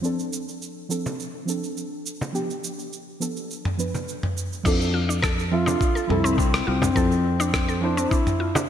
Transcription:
0.01 F3 C4 D4 A4, shaker
0.19 shaker
0.33 shaker
0.48 shaker
0.62 shaker
0.89 F3 C4 D4 A4, shaker
1.06 frame drum, shaker
1.20 shaker
1.45 F3 C4 D4, shaker
1.49 A4
1.64 shaker
1.77 shaker
2.06 shaker
2.21 frame drum, shaker
2.33 F3 B3 D4 G4, shaker
2.50 shaker
2.64 shaker
2.79 shaker
2.93 shaker
3.20 F3 B3 D4 A4, shaker
3.37 shaker
3.51 shaker
3.65 mid tom
3.78 F3 B3 D4 B4, shaker
3.94 frame drum, shaker
4.08 shaker
4.23 mid tom
4.37 shaker
4.53 shaker
4.63 F2 F3 C4 D4 E4 A4, kick, crash, shaker
4.81 shaker
4.94 F4
5.09 D4, shaker
5.22 A4, kick, cross-stick, shaker
5.39 shaker
5.51 F3 C4 F4 A4 E5
5.66 D4, frame drum, shaker
5.81 kick, shaker
5.95 A4, shaker
6.07 C2 F3 C4 E4, mid tom
6.11 A4
6.24 C4, shaker
6.38 C4 D4, kick, shaker
6.54 cross-stick, shaker
6.67 C2 C4 F4
6.82 D4, mid tom, frame drum, shaker
6.95 F2 F3 C4 E4 A4, kick, shaker
7.11 shaker
7.40 D4, shaker
7.54 kick, cross-stick, shaker
7.68 A4, shaker
7.81 F3 C4 D4 E4 C5
7.97 C4, shaker
8.11 D4 E4, kick, shaker
8.27 mid tom, shaker
8.40 F4
8.55 D4, frame drum, shaker

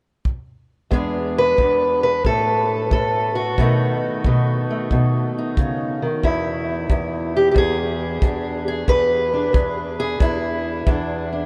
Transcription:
0.25 kick
0.91 E2 G#3 B3 D4 G#4, kick
1.38 B4
1.58 E2 D4, kick
2.03 B4
2.25 A2 A4, kick
2.91 A2 A4, kick
3.35 F#4
3.58 B2 D#3 A3 D#4, kick
4.24 B2 D#4, kick
4.70 A3
4.91 B2, kick
5.38 D#4
5.57 C#3, kick
6.02 D#3
6.23 E2 E4, kick
6.90 E2, kick
7.37 G4
7.51 E2 G4
7.56 G#4, kick
8.22 E2 D4, kick
8.68 G#4
8.88 E2 B4, kick
9.33 D4
9.53 E2, kick
10.00 G#4
10.20 E2 E4, kick
10.87 E2 D4, kick
11.33 D4

